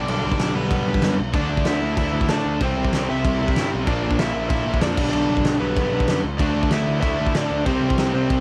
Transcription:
Already playing: G2 D3 G3
0.08 B1 D4 D5, crash
0.25 B1
0.32 kick
0.39 B1, snare, crash
0.53 B1 G2 D3 G3 B3 B4
0.71 B1 G2 D3 G3, kick, crash
0.86 B1 D3 G3
0.90 G2, kick
1.02 F#2, snare, crash
1.19 B1
1.33 D2 D3 A3 D4 D5, kick, crash
1.49 D2
1.57 kick
1.65 D2 E4 E5, snare, crash
1.82 D2
1.97 D2 D3 A3 D4 E4 E5, kick, crash
2.14 D2 D3 A3 D4
2.21 kick
2.28 A2 D3 A3 D4 D5, snare, crash
2.45 D2
2.61 C2 C3 G3 C4 C5, kick, crash
2.77 C2
2.85 kick
2.92 C2, snare, crash
3.10 C2 E4 E5
3.25 C2 C3 G3 C4, kick, crash
3.39 C2 C3 G3 C4
3.48 kick
3.55 G2 C3 G3 C4, snare, crash
3.74 B1
3.87 A#1 A#2 F3 A#3 D4 D5, kick, crash
4.04 A#1
4.11 kick
4.19 A#1 E4 E5, snare, crash
4.34 A#1
4.49 A#1 A#2 E4 E5, kick, crash
4.53 F3 A#3
4.66 A#1 A#2 F3 A#3
4.74 kick
4.81 F2 A#2 F3 D4 D5, snare, crash
4.85 A#3
4.97 B1 G2 D3 G3, kick, crash
5.10 B1 D4 D5, crash
5.29 B1
5.37 kick
5.44 B1, snare, crash
5.60 B1 G2 D3 G3 B3 B4
5.77 B1 G2 D3 G3, kick, crash
5.92 B1 G2 D3 G3
6.00 kick
6.08 F#2, snare, crash
6.23 C#2
6.38 D2 D3 A3 D4 D5, kick, crash
6.55 D2
6.63 kick
6.71 D2 E4 E5, snare, crash
6.88 D2
7.01 D2 D3 A3 E4 E5, kick, crash
7.05 D4
7.19 D2 D3 A3 D4
7.26 kick
7.35 A2 D3 A3 D4 D5, snare, crash
7.50 D2
7.66 C2 C3 G3 C4 C5, kick, crash
7.83 C2
7.90 kick
7.98 C2, snare, crash
8.14 C2 C4 C5
8.30 C2 C3 G3 C4, kick, crash

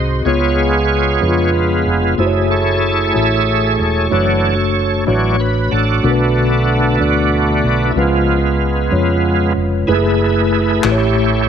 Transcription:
Already playing: C2 G#2 C4 F#4 G#4 C5 D#5
0.25 C#2 C#3 G#3 B3 F4 G#4 C#5
1.21 F2 B3 D4 G#4 B4
1.28 F4
1.86 F1
2.18 F#1 A3 E4 F#4 G#4 C5
2.26 C#5
2.50 E4 A4 C#5
3.13 A1 A3 E4 F#4 A4 C#5 E5
3.79 E1 C#5
4.10 F#1 E3 F#3 A3 D4 F#4 A4 C#5
5.06 A1 E3 F#3 A3 D4 F#4 C#5
5.40 B4
5.71 A1 D4 F#4 A4
6.03 B1 B2 D3 A3 B3 D4 F#4 A#4
6.11 B4
6.99 D2 A3 D4 F#4 D5
7.64 B1
7.90 E4
7.95 C#2 C#3 F3 G#3 B3 C#4 F4 B4
8.91 F2 G#3 C#4 F4 C#5
9.56 F1
9.87 F#1 G#3 A3 E4 G#4 B4
9.94 A3
10.84 A1 A2 A3 E4 G4 B4 C#5, clap
10.92 C#5

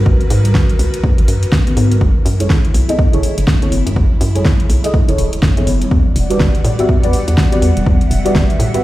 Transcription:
Already playing: F#4 A#4 B4
0.06 G#1, kick
0.21 closed hi-hat
0.30 G#2, open hi-hat
0.44 closed hi-hat, low conga
0.55 kick, snare
0.69 closed hi-hat
0.79 C#2, open hi-hat
0.94 closed hi-hat
1.04 D#2, kick
1.18 G#1, closed hi-hat
1.28 F#2, open hi-hat
1.43 closed hi-hat
1.52 kick, snare
1.67 closed hi-hat, high conga
1.77 G#2, open hi-hat
1.91 closed hi-hat, high conga, low conga
2.01 F#1 E4, kick
2.26 F#2, open hi-hat
2.40 E4 G#4 A4 C#5, closed hi-hat, low conga
2.50 kick, snare
2.65 closed hi-hat
2.74 B1, open hi-hat
2.88 E4 G#4 A4 D#5, closed hi-hat, high conga
2.99 kick
3.13 F#1 E4 G#4 A4 C#5, closed hi-hat
3.23 open hi-hat
3.38 F#1, closed hi-hat
3.48 kick, snare
3.62 E4 G#4 A4 C#5, closed hi-hat, high conga
3.72 F#1, open hi-hat
3.87 F#2, closed hi-hat, high conga, low conga
3.96 F#1, kick
4.21 F#2, open hi-hat
4.35 E4 G#4 A4 C#5, closed hi-hat, low conga
4.45 kick, snare
4.60 closed hi-hat
4.70 B1, open hi-hat
4.84 E4 G#4 A4 D#5, closed hi-hat
4.94 C#2, kick
5.08 F#1 E4 G#4 A4 C#5, closed hi-hat
5.18 E1, open hi-hat
5.33 closed hi-hat
5.43 F#2, kick, snare
5.57 E4 G#4 A4 C#5, closed hi-hat, high conga
5.67 F#1, open hi-hat
5.81 closed hi-hat, high conga, low conga
5.91 E2 G3 D5 F#5, kick
6.16 E1, open hi-hat
6.30 F#4 G4 B4 D5, closed hi-hat, low conga
6.40 kick, snare
6.55 closed hi-hat
6.64 A2, open hi-hat
6.79 F#4 G4 B4 E5, closed hi-hat, high conga
6.89 kick
7.03 E2 F#4 G4 B4 D5, closed hi-hat
7.13 open hi-hat
7.28 E2, closed hi-hat
7.38 kick, snare
7.52 F#4 G4 B4 D5, closed hi-hat, high conga
7.62 E2, open hi-hat
7.76 E1, closed hi-hat, high conga, low conga
7.86 E2 E5, kick
8.01 closed hi-hat
8.11 E1, open hi-hat
8.25 F#4 G4 B4 D5, closed hi-hat, low conga
8.35 kick, snare
8.50 closed hi-hat
8.60 A2, open hi-hat
8.74 F#4 G4 B4 E5, closed hi-hat, high conga

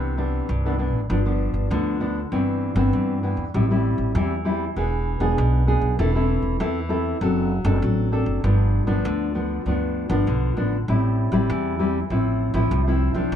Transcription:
Already playing: C2 C3 E3 B3 D4
0.17 E3 B3 D4
0.49 C2 G2
0.65 E3 B3 D4
0.78 E3 B3 D4
0.92 A1
1.10 G1 G2 F3 B3 D4
1.26 F3 B3 D4
1.54 G1
1.71 D2 D3 F3 B3 D4
2.00 F3 B3 D4
2.32 G1 G2 E3 B3 C4
2.76 G1 E3 B3 C4
2.93 G2
3.23 E3 B3 C4
3.37 E2
3.54 A1 A2 G3 C4 E4
3.71 G3 C4 E4
3.98 A1
4.15 E2 E3 G3 C4 E4
4.45 G3 C4 E4
4.76 E1 E3 B3 D4 G#4
5.20 E1 B3 D4 G#4
5.38 B1 B2
5.67 B3 D4 G#4
5.81 B1
5.99 E1 E3 C4 E4 A4
6.15 C4 E4 A4
6.42 E1
6.60 E2 E3 C4 E4 A4
6.89 C4 E4 A4
7.21 F#1 F#3 C4 D4 A4
7.65 F#1 C4 D4 A4
7.82 A1 F#3
8.12 C4 D4 A4
8.26 F#1
8.44 G1 G2 F3 B3 D4
8.87 G1 F3 B3 D4
9.05 D2 D3
9.35 F3 B3 D4
9.66 D2 G2 F3 B3 D4
10.09 G1 F3 B3 D4
10.27 B1 D3
10.57 A1 F3 B3 D4
10.88 A1 A2 G3 C4 E4
11.32 A1 G3 C4 E4
11.50 E2 E3
11.79 G3 C4 E4
12.10 A1 A2 F3 C4 E4
12.54 A1 F3 C4 E4
12.71 C2 A2
12.87 F3 C4 E4
13.14 C2 F3 C4 D4
13.32 A1 A2

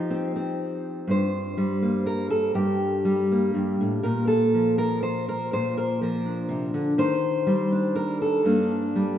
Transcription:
Already playing: F3 D#4
0.10 C4
0.36 C4
1.07 G2 C5
1.57 G3
1.82 A#3
2.06 A#4
2.30 A4
2.55 G2 G4
3.05 G3
3.31 A#3
3.54 G2
3.81 A2
4.03 A#2 A#4
4.27 A4
4.54 F3
4.78 A#4
5.03 C5
5.29 A#4
5.53 A#2 C5
5.77 A#4
6.01 F3 A#4
6.26 D4
6.49 C3
6.74 D3
6.98 D#3 C5
7.47 G3
7.72 D4
7.95 A#4
8.22 A4
8.45 G2 A#3 D4
8.96 G3

